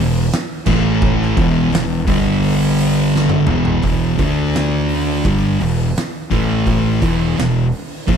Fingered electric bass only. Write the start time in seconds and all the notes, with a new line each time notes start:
Already playing: E1
0.67 A1
1.37 E1
1.72 E1
2.08 G1
3.49 E1
3.84 E1
4.19 D2
5.25 G1
5.61 E1
6.31 A1
7.02 E1
7.38 E1
8.08 A#1